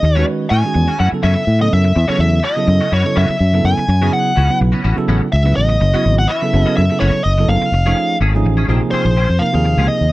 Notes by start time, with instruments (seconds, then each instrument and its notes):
Already playing: lead electric guitar D#5
0.03 fingered electric bass D#2, muted clean electric guitar stroke
0.15 tine electric piano D#3 G#3 C#4 F#4 B4, clean electric guitar A3 C#4 F#4
0.27 muted clean electric guitar stroke
0.50 fingered electric bass A2, clean electric guitar A3 C#4 F#4, lead electric guitar G#5
0.63 tine electric piano D#3 G#3 C#4 F#4 G#4, muted clean electric guitar stroke
0.74 fingered electric bass E2, muted clean electric guitar stroke
0.88 clean electric guitar C#4 F#4
0.98 fingered electric bass F#2, clean electric guitar E3 A3 C#4 F#4, lead electric guitar F#5
1.12 tine electric piano C#3 F#3 B3 E4 A4, muted clean electric guitar stroke, muted fingered electric bass stroke
1.22 fingered electric bass F#2, clean electric guitar E3 A3 C#4 F#4, lead electric guitar E5
1.35 muted clean electric guitar stroke
1.47 fingered electric bass A2
1.59 tine electric piano C#3 F#3 B3 E4 A4, lead electric guitar D#5, muted clean electric guitar stroke
1.73 fingered electric bass F#2, lead electric guitar E5
1.84 muted clean electric guitar stroke
1.95 fingered electric bass E2, muted clean electric guitar stroke
2.07 tine electric piano C#3 F#3 B3 E4 A4, clean electric guitar E3 A3 C#4 F#4, lead electric guitar C#5, muted fingered electric bass stroke
2.19 fingered electric bass E2, lead electric guitar E5, muted clean electric guitar stroke
2.43 clean electric guitar E3 A3 C#4 F#4, lead electric guitar D#5
2.56 tine electric piano C#3 F#3 B3 E4 A4, muted clean electric guitar stroke
2.67 fingered electric bass F#2, muted clean electric guitar stroke
2.81 clean electric guitar A3 C#4 F#4
2.91 fingered electric bass F#2, clean electric guitar E3 B3 C#4 F#4, lead electric guitar C#5
3.04 tine electric piano C#3 F#3 B3 E4 A4, muted clean electric guitar stroke
3.15 fingered electric bass F#2, clean electric guitar E3 B3 C#4 F#4, lead electric guitar E5
3.29 muted fingered electric bass stroke, muted clean electric guitar stroke
3.40 fingered electric bass F#2
3.53 tine electric piano C#3 F#3 B3 E4 A4, muted clean electric guitar stroke
3.64 fingered electric bass F#2, lead electric guitar G#5
3.78 muted clean electric guitar stroke, muted fingered electric bass stroke
3.88 fingered electric bass F#2, muted clean electric guitar stroke
4.01 tine electric piano C#3 F#3 B3 E4 G#4, clean electric guitar E3 B3 C#4 F#4
4.13 lead electric guitar F#5, muted clean electric guitar stroke
4.36 fingered electric bass C#2, clean electric guitar E3 B3 C#4 F#4
4.49 tine electric piano C#3 F#3 B3 E4 B4, muted clean electric guitar stroke
4.61 fingered electric bass B1, muted clean electric guitar stroke
4.72 clean electric guitar B3 C#4 F#4
4.84 fingered electric bass A1, clean electric guitar E3 B3 C#4 F#4
4.96 tine electric piano C#3 F#3 B3 E4 A4, muted clean electric guitar stroke, muted fingered electric bass stroke
5.08 fingered electric bass A1, clean electric guitar E3 B3 C#4 F#4
5.22 muted clean electric guitar stroke
5.32 fingered electric bass C#2, lead electric guitar E5
5.43 tine electric piano C#3 F#3 B3 E4 B4, muted clean electric guitar stroke
5.56 fingered electric bass A1, lead electric guitar D#5
5.69 muted clean electric guitar stroke
5.80 fingered electric bass F#1, muted clean electric guitar stroke
5.93 tine electric piano C#3 F#3 B3 E4 F#4, clean electric guitar E3 B3 C#4 F#4
6.05 fingered electric bass G#1, muted clean electric guitar stroke
6.19 lead electric guitar F#5
6.28 clean electric guitar E3 B3 C#4 F#4, lead electric guitar E5
6.42 tine electric piano C#3 F#3 B3 E4 A4, muted clean electric guitar stroke
6.53 fingered electric bass F#1, tine electric piano C#3 F#3 B3 E4 A4, muted clean electric guitar stroke
6.65 clean electric guitar B3 C#4 F#4, lead electric guitar D#5
6.77 fingered electric bass F#2, lead electric guitar E5
6.89 tine electric piano C#3 F#3 B3 E4 A4, muted clean electric guitar stroke
7.00 fingered electric bass F#1, clean electric guitar E3 B3 C#4 F#4, lead electric guitar C#5
7.13 muted clean electric guitar stroke
7.24 fingered electric bass F#1, lead electric guitar D#5
7.38 tine electric piano C#3 F#3 B3 E4 A4, muted clean electric guitar stroke
7.48 fingered electric bass F#1, lead electric guitar F5
7.62 muted clean electric guitar stroke, muted fingered electric bass stroke
7.72 fingered electric bass F1, muted clean electric guitar stroke
7.86 clean electric guitar D#3 A3 C#4 G#4, tine electric piano F3 A3 C#4 D#4 G#4
7.97 muted clean electric guitar stroke
8.20 fingered electric bass G#1, clean electric guitar D#3 A3 C#4 G#4
8.34 tine electric piano F3 A3 C#4 D#4 G#4, muted clean electric guitar stroke
8.45 fingered electric bass A1, muted clean electric guitar stroke
8.57 clean electric guitar A3 C#4 G#4
8.68 fingered electric bass A#1, tine electric piano C3 F3 A#3 D#4 G#4, clean electric guitar F3 C4 C#4 G#4
8.81 muted clean electric guitar stroke
8.91 clean electric guitar F3 C4 C#4 G#4, lead electric guitar C5, muted fingered electric bass stroke
9.05 fingered electric bass A#1, muted clean electric guitar stroke
9.16 clean electric guitar F3 C4 C#4 G#4
9.29 fingered electric bass F2, muted clean electric guitar stroke
9.39 tine electric piano C3 F3 A#3 D#4 A#4, lead electric guitar F5, muted fingered electric bass stroke
9.52 fingered electric bass D#2, tine electric piano C3 F3 A#3 D#4 G#4, muted clean electric guitar stroke
9.65 muted clean electric guitar stroke
9.77 fingered electric bass C#2, clean electric guitar F3 C4 C#4 G#4
9.88 lead electric guitar D#5, muted clean electric guitar stroke
10.01 fingered electric bass D#2